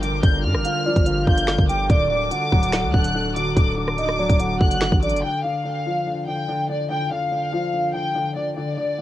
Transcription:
Already playing: G1 D3 F3 G3 D4 F4 A#4 G5
0.02 D3 D6, closed hi-hat
0.23 G1 D3 G6, kick, closed hi-hat
0.44 G2 D3 F6
0.54 G1, cross-stick
0.65 D3 F5, closed hi-hat
0.86 F3 D5
0.96 G1, kick, closed hi-hat
1.06 D3 F5, closed hi-hat
1.27 G1 D3 G6, kick
1.38 closed hi-hat
1.47 D3, finger snap, snare
1.59 G1, kick
1.69 D3 G5 D6, closed hi-hat
1.90 D1 D3 F#4 A4 D5 D6, kick, closed hi-hat
2.10 D3 D6
2.31 D3 F#5, closed hi-hat
2.52 D1 F#3, kick
2.63 closed hi-hat
2.72 D3, finger snap, snare, closed hi-hat
2.84 D2
2.94 D1 D3 F#6, kick
3.04 closed hi-hat
3.15 D3
3.36 D3 D6, closed hi-hat
3.56 D1 D3 D6, kick, closed hi-hat
3.77 D3 D6
3.88 cross-stick
3.98 D3 D#5, closed hi-hat
4.09 cross-stick
4.19 F#3 D5
4.30 D1, kick, closed hi-hat
4.40 D3 F#5, closed hi-hat
4.61 F#1 D3 F#6, kick
4.71 closed hi-hat
4.81 D3, finger snap, snare
4.92 A1, kick
5.02 D3 D5 D6, closed hi-hat
5.09 F#1, closed hi-hat
5.16 closed hi-hat
5.23 D3 G5
5.44 D3 F5
5.65 D3
5.86 F3
6.07 D3
6.27 D3 G5
6.48 D3
6.69 D3 D5
6.90 D3 G5
7.11 D3 F5
7.32 D3
7.52 F3
7.73 D3
7.94 D3 G5
8.15 D3
8.36 D3 D5
8.57 D3 D5
8.77 D3 D5
8.98 D3

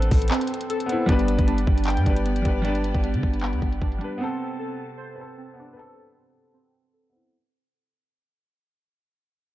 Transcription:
Already playing: A1 B3 C4 D4 A4 B4 C5
0.02 closed hi-hat
0.11 A1, kick, open hi-hat
0.22 closed hi-hat
0.28 C4, clap, closed hi-hat
0.34 closed hi-hat
0.41 closed hi-hat
0.47 closed hi-hat
0.54 closed hi-hat
0.61 closed hi-hat
0.70 A4, closed hi-hat
0.80 closed hi-hat
0.86 B3 C4, closed hi-hat
0.92 E4
1.06 G1 G3 B3 D4 G4 D5, kick, closed hi-hat
1.12 B4
1.19 closed hi-hat
1.28 closed hi-hat
1.39 G1, kick, closed hi-hat
1.47 D4, closed hi-hat
1.58 closed hi-hat
1.67 G1, kick
1.78 closed hi-hat
1.84 G5, clap, closed hi-hat
1.90 closed hi-hat
1.97 G2, closed hi-hat
2.04 G1 G3 D4, kick, closed hi-hat
2.10 B4
2.16 closed hi-hat
2.26 B3, closed hi-hat
2.36 closed hi-hat
2.42 G1 G3 D4, kick, closed hi-hat
2.48 B4
2.62 G3 D4, closed hi-hat
2.68 B4
2.75 closed hi-hat
2.84 closed hi-hat
2.94 G1, kick, closed hi-hat
3.04 closed hi-hat
3.14 D3, closed hi-hat
3.23 G1, kick
3.34 closed hi-hat
3.40 B3, clap, closed hi-hat
3.46 closed hi-hat
3.53 D2, closed hi-hat
3.62 G1, kick, closed hi-hat
3.72 closed hi-hat
3.82 G1 D4, kick, closed hi-hat
3.92 closed hi-hat
3.98 G3 D4, closed hi-hat
4.04 B4
4.18 C3 B3 C4 A4 A5
4.24 A4
4.59 A4
4.97 C5
5.15 C4 B4
5.21 A4
5.38 C4
5.54 B3 C4
5.60 D4
5.73 C4 A4 B4
5.79 A4
6.54 C4
6.93 A4
7.10 B3 C4
7.16 E4

